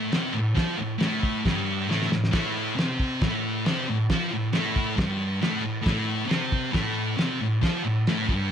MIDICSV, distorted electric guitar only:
0, 0, Header, 1, 2, 480
1, 0, Start_track
1, 0, Key_signature, 0, "minor"
1, 0, Tempo, 440529
1, 622, Time_signature, 4, 2, 24, 8
1, 9279, End_track
2, 0, Start_track
2, 0, Title_t, "Distorted electric guitar"
2, 0, Program_c, 0, 30
2, 0, Note_on_c, 0, 45, 83
2, 0, Note_on_c, 0, 57, 110
2, 127, Note_off_c, 0, 45, 0
2, 133, Note_on_c, 0, 48, 93
2, 137, Note_off_c, 0, 57, 0
2, 145, Note_on_c, 0, 60, 109
2, 360, Note_off_c, 0, 48, 0
2, 364, Note_on_c, 0, 45, 79
2, 376, Note_off_c, 0, 60, 0
2, 565, Note_off_c, 0, 45, 0
2, 601, Note_on_c, 0, 53, 88
2, 603, Note_on_c, 0, 65, 101
2, 840, Note_off_c, 0, 53, 0
2, 844, Note_on_c, 0, 45, 76
2, 846, Note_off_c, 0, 65, 0
2, 1045, Note_off_c, 0, 45, 0
2, 1072, Note_on_c, 0, 45, 97
2, 1083, Note_on_c, 0, 57, 106
2, 1561, Note_off_c, 0, 45, 0
2, 1563, Note_on_c, 0, 43, 88
2, 1566, Note_off_c, 0, 57, 0
2, 1583, Note_on_c, 0, 55, 109
2, 2045, Note_on_c, 0, 45, 97
2, 2046, Note_off_c, 0, 43, 0
2, 2056, Note_off_c, 0, 55, 0
2, 2058, Note_on_c, 0, 57, 108
2, 2275, Note_off_c, 0, 45, 0
2, 2288, Note_on_c, 0, 45, 76
2, 2294, Note_off_c, 0, 57, 0
2, 2488, Note_off_c, 0, 45, 0
2, 2517, Note_on_c, 0, 45, 93
2, 2530, Note_on_c, 0, 57, 98
2, 2997, Note_off_c, 0, 45, 0
2, 3001, Note_on_c, 0, 48, 98
2, 3008, Note_off_c, 0, 57, 0
2, 3013, Note_on_c, 0, 60, 104
2, 3486, Note_off_c, 0, 48, 0
2, 3491, Note_off_c, 0, 60, 0
2, 3505, Note_on_c, 0, 45, 82
2, 3516, Note_on_c, 0, 57, 102
2, 3978, Note_off_c, 0, 45, 0
2, 3983, Note_off_c, 0, 57, 0
2, 3985, Note_on_c, 0, 48, 103
2, 3996, Note_on_c, 0, 60, 117
2, 4218, Note_off_c, 0, 48, 0
2, 4223, Note_off_c, 0, 60, 0
2, 4234, Note_on_c, 0, 45, 72
2, 4421, Note_off_c, 0, 45, 0
2, 4472, Note_on_c, 0, 53, 99
2, 4483, Note_on_c, 0, 65, 104
2, 4701, Note_off_c, 0, 53, 0
2, 4707, Note_off_c, 0, 65, 0
2, 4707, Note_on_c, 0, 45, 78
2, 4898, Note_off_c, 0, 45, 0
2, 4940, Note_on_c, 0, 45, 97
2, 4952, Note_on_c, 0, 57, 103
2, 5403, Note_on_c, 0, 43, 91
2, 5415, Note_off_c, 0, 45, 0
2, 5418, Note_on_c, 0, 55, 91
2, 5421, Note_off_c, 0, 57, 0
2, 5885, Note_on_c, 0, 45, 99
2, 5886, Note_off_c, 0, 43, 0
2, 5894, Note_off_c, 0, 55, 0
2, 5900, Note_on_c, 0, 57, 121
2, 6105, Note_off_c, 0, 45, 0
2, 6118, Note_on_c, 0, 45, 80
2, 6134, Note_off_c, 0, 57, 0
2, 6322, Note_off_c, 0, 45, 0
2, 6348, Note_on_c, 0, 45, 104
2, 6357, Note_on_c, 0, 57, 105
2, 6814, Note_off_c, 0, 45, 0
2, 6818, Note_on_c, 0, 48, 93
2, 6837, Note_off_c, 0, 57, 0
2, 6841, Note_on_c, 0, 60, 106
2, 7313, Note_off_c, 0, 48, 0
2, 7323, Note_on_c, 0, 45, 96
2, 7324, Note_off_c, 0, 60, 0
2, 7335, Note_on_c, 0, 57, 98
2, 7804, Note_off_c, 0, 45, 0
2, 7809, Note_on_c, 0, 48, 95
2, 7810, Note_off_c, 0, 57, 0
2, 7817, Note_on_c, 0, 60, 108
2, 8048, Note_off_c, 0, 48, 0
2, 8052, Note_off_c, 0, 60, 0
2, 8067, Note_on_c, 0, 45, 75
2, 8256, Note_off_c, 0, 45, 0
2, 8299, Note_on_c, 0, 53, 90
2, 8316, Note_on_c, 0, 65, 111
2, 8532, Note_off_c, 0, 53, 0
2, 8541, Note_off_c, 0, 65, 0
2, 8542, Note_on_c, 0, 45, 76
2, 8733, Note_off_c, 0, 45, 0
2, 8803, Note_on_c, 0, 45, 102
2, 8813, Note_on_c, 0, 57, 106
2, 9014, Note_on_c, 0, 43, 88
2, 9024, Note_off_c, 0, 45, 0
2, 9029, Note_off_c, 0, 57, 0
2, 9036, Note_on_c, 0, 55, 104
2, 9279, Note_off_c, 0, 43, 0
2, 9279, Note_off_c, 0, 55, 0
2, 9279, End_track
0, 0, End_of_file